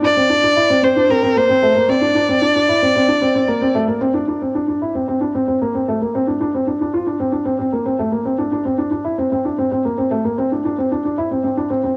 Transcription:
0.03 0.13 D4 medium
0.03 0.85 D5 loud
0.17 0.27 C4 medium
0.30 0.40 D4 medium
0.43 0.54 D4 medium
0.56 0.67 E4 medium
0.70 0.80 C4 medium
0.83 0.93 C4 medium
0.83 1.12 C5 medium
0.97 1.07 D4 medium
1.09 1.20 C4 medium
1.09 1.39 A#4 medium
1.23 1.33 C4 medium
1.36 1.47 A#3 medium
1.36 1.91 C5 medium
1.49 1.60 C4 medium
1.63 1.73 A3 medium
1.76 1.86 A#3 medium
1.88 1.99 C4 medium
1.88 3.75 D5 loud
2.01 2.12 D4 medium
2.15 2.26 D4 medium
2.29 2.39 C4 medium
2.42 2.52 D4 medium
2.56 2.66 D4 medium
2.69 2.79 E4 medium
2.82 2.93 C4 medium
2.96 3.06 C4 medium
3.08 3.19 D4 medium
3.21 3.32 C4 medium
3.35 3.46 C4 medium
3.48 3.59 A#3 medium
3.62 3.72 C4 medium
3.75 3.85 A3 medium
3.88 3.98 A#3 medium
4.01 4.12 C4 medium
4.14 4.25 D4 medium
4.28 4.39 D4 medium
4.42 4.52 C4 medium
4.55 4.65 D4 medium
4.68 4.79 D4 medium
4.82 4.92 E4 medium
4.95 5.05 C4 medium
5.08 5.18 C4 medium
5.21 5.31 D4 medium
5.35 5.45 C4 medium
5.48 5.58 C4 medium
5.62 5.72 A#3 medium
5.75 5.85 C4 medium
5.88 5.98 A3 medium
6.02 6.12 A#3 medium
6.15 6.25 C4 medium
6.27 6.38 D4 medium
6.41 6.51 D4 medium
6.54 6.65 C4 medium
6.67 6.78 D4 medium
6.81 6.91 D4 medium
6.94 7.04 F4 medium
7.07 7.17 D4 medium
7.20 7.30 C4 medium
7.32 7.43 D4 medium
7.45 7.56 C4 medium
7.59 7.70 C4 medium
7.72 7.83 A#3 medium
7.86 7.96 C4 medium
7.99 8.10 A3 medium
8.12 8.23 A#3 medium
8.25 8.36 C4 medium
8.38 8.49 D4 medium
8.52 8.63 D4 medium
8.65 8.76 C4 medium
8.78 8.89 D4 medium
8.91 9.02 D4 medium
9.04 9.15 E4 medium
9.18 9.29 C4 medium
9.32 9.43 C4 medium
9.45 9.56 D4 medium
9.58 9.69 C4 medium
9.71 9.82 C4 medium
9.85 9.96 A#3 medium
9.98 10.09 C4 medium
10.11 10.22 A3 medium
10.25 10.35 A#3 medium
10.38 10.49 C4 medium
10.52 10.63 D4 medium
10.65 10.76 D4 medium
10.78 10.89 C4 medium
10.92 11.02 D4 medium
11.05 11.16 D4 medium
11.18 11.28 E4 medium
11.31 11.42 C4 medium
11.44 11.55 C4 medium
11.57 11.68 D4 medium
11.70 11.81 C4 medium
11.84 11.94 C4 medium

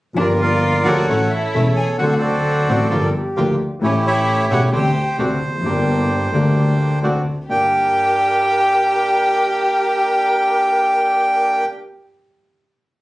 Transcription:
0.14 0.82 G1 medium
0.14 0.82 G2 medium
0.14 0.81 F3 medium
0.14 0.82 G3 medium
0.14 0.82 A#3 medium
0.14 0.27 D4 medium
0.14 0.83 D4 medium
0.14 0.83 F4 medium
0.14 0.28 D5 medium
0.19 1.06 F4 soft
0.19 0.83 G4 medium
0.19 0.41 A#4 soft
0.40 0.82 F4 medium
0.40 1.06 A#4 medium
0.40 1.06 D5 soft
0.40 0.88 F5 medium
0.84 1.04 D2 medium
0.84 1.05 D2 medium
0.84 1.05 D3 medium
0.84 1.04 F3 medium
0.84 1.05 G3 medium
0.84 1.05 A#3 medium
0.84 1.04 D4 medium
0.84 1.05 F4 medium
0.84 1.27 F#4 medium
0.84 1.05 G4 medium
0.84 1.32 A4 medium
0.84 1.32 C#5 medium
0.84 1.33 F#5 medium
1.08 1.28 A1 medium
1.08 1.28 A2 medium
1.08 1.28 E3 medium
1.08 1.28 A3 medium
1.08 1.28 A3 soft
1.08 1.28 C#4 soft
1.08 1.28 C#4 medium
1.08 1.28 E4 medium
1.08 1.28 A4 medium
1.30 1.74 E4 medium
1.30 1.97 A4 medium
1.30 1.97 C#5 medium
1.30 1.73 E5 medium
1.54 1.74 E1 medium
1.54 1.74 E2 medium
1.54 1.74 E3 medium
1.54 1.73 A3 medium
1.54 1.74 A3 medium
1.54 1.74 C#4 medium
1.54 1.74 E4 medium
1.54 1.74 A4 medium
1.76 1.87 G#4 medium
1.76 1.86 G#5 medium
1.98 2.64 D2 medium
1.98 2.65 D2 medium
1.98 2.64 D3 medium
1.98 2.64 F#3 medium
1.98 2.64 C4 medium
1.98 2.65 C4 medium
1.98 2.65 D4 medium
1.98 2.05 F#4 medium
1.98 2.65 F#4 medium
1.98 2.04 F#5 medium
2.02 2.66 A4 medium
2.02 2.22 A4 medium
2.02 2.88 C5 medium
2.08 2.14 F#5 medium
2.13 2.18 F#4 medium
2.21 3.10 D4 medium
2.21 2.87 F#4 soft
2.21 3.10 A4 soft
2.21 3.09 D5 medium
2.68 2.87 A1 medium
2.68 2.88 A2 medium
2.68 2.88 F#3 medium
2.68 2.87 C4 medium
2.68 2.88 C4 medium
2.68 2.87 D4 medium
2.68 2.88 D4 medium
2.68 2.87 F#4 medium
2.68 2.88 A4 medium
2.68 2.94 D5 medium
2.90 3.10 G1 medium
2.90 3.10 G2 medium
2.90 3.10 F3 medium
2.90 3.10 A#3 medium
2.90 3.10 D4 medium
2.90 3.10 F4 medium
2.90 3.10 G4 medium
2.90 3.02 A#4 medium
3.03 3.16 A#4 medium
3.15 3.71 G4 medium
3.36 3.56 D2 medium
3.36 3.56 D3 medium
3.36 3.56 F3 medium
3.36 3.55 A#3 medium
3.36 3.56 A#3 medium
3.36 3.56 D4 medium
3.36 3.56 F4 medium
3.36 3.56 G4 medium
3.79 4.46 A1 medium
3.79 4.47 A2 medium
3.79 4.45 E3 medium
3.79 4.46 A3 medium
3.79 4.47 A3 medium
3.79 4.47 C#4 medium
3.79 4.47 G4 medium
3.83 4.47 A1 medium
3.83 3.95 C#4 medium
3.83 4.70 E4 medium
3.83 4.06 G4 medium
3.83 3.94 C#5 medium
4.07 4.48 E4 medium
4.07 4.70 G4 medium
4.07 4.70 C#5 medium
4.07 4.53 E5 medium
4.50 4.69 E1 medium
4.50 4.70 E1 medium
4.50 4.70 E2 medium
4.50 4.69 E3 medium
4.50 4.69 A3 medium
4.50 4.70 A3 medium
4.50 4.69 C#4 medium
4.50 4.70 C#4 medium
4.50 4.62 F#4 medium
4.50 4.69 G4 medium
4.50 4.70 G4 medium
4.50 4.63 F#5 medium
4.72 4.92 D2 medium
4.72 4.92 D3 medium
4.72 4.92 A3 medium
4.72 4.92 C4 medium
4.72 4.92 C4 soft
4.72 4.92 D4 medium
4.72 5.15 G4 medium
4.72 4.92 G4 medium
4.72 4.93 G4 medium
4.72 6.99 C5 medium
4.72 5.17 G5 medium
5.18 5.38 D2 medium
5.18 5.38 D3 medium
5.18 5.38 A3 medium
5.18 5.38 C4 medium
5.18 5.38 D4 medium
5.18 5.38 F#4 medium
5.42 5.65 F1 medium
5.49 5.54 E2 soft
5.55 5.60 F2 soft
5.61 5.65 F#2 medium
5.61 6.29 D3 medium
5.61 6.30 G3 medium
5.61 6.30 D4 medium
5.65 6.30 G1 medium
5.65 6.30 G2 medium
5.65 6.30 A#3 medium
5.65 6.30 G4 medium
5.65 6.31 G4 medium
6.33 6.99 D2 medium
6.33 6.99 D3 medium
6.33 6.99 G3 medium
6.33 6.99 A#3 medium
6.33 7.00 A#3 medium
6.33 6.99 D4 medium
6.33 6.99 G4 medium
6.33 7.01 G4 medium
7.03 7.22 D2 medium
7.03 7.22 D3 medium
7.03 7.22 A3 medium
7.03 7.22 C4 medium
7.03 7.23 C4 medium
7.03 7.22 D4 medium
7.03 7.22 F#4 medium
7.03 7.23 F#4 medium
7.48 7.68 G1 soft
7.48 11.64 G2 soft
7.48 11.64 A#3 soft
7.48 11.64 D4 soft
7.48 11.65 D4 soft
7.48 11.63 G4 medium
7.48 11.64 G4 medium
7.48 11.64 G4 soft
7.48 11.64 A#4 medium
7.48 11.66 G5 medium

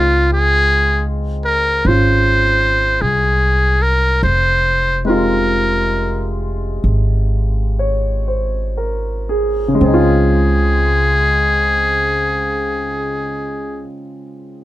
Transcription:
0.00 1.81 C#2 medium
0.00 4.23 G#3 soft
0.00 4.24 C4 soft
0.00 4.24 D#4 soft
0.00 0.32 F4 medium
0.00 1.87 F4 medium
0.33 1.06 G#4 medium
1.45 1.88 A#4 medium
1.85 2.98 G#1 medium
1.85 4.23 C#4 soft
1.85 4.25 F4 soft
1.85 3.03 C5 medium
3.01 4.19 C2 medium
3.01 3.84 G#4 medium
3.82 4.23 A#4 medium
4.23 6.80 F1 medium
4.23 5.02 C5 medium
5.05 9.81 C3 soft
5.05 9.73 G#3 soft
5.05 9.82 D#4 soft
5.05 6.34 A#4 medium
5.09 9.82 F4 medium
6.84 9.77 G#1 medium
7.79 8.57 C#5 soft
8.28 9.23 C5 soft
8.77 9.59 A#4 soft
9.29 10.12 G#4 soft
9.68 13.74 C#3 medium
9.75 13.81 G#3 medium
9.81 13.83 C#2 medium
9.81 13.87 C4 soft
9.81 13.85 G#4 medium
9.88 13.94 D#4 medium
9.94 14.00 F4 medium

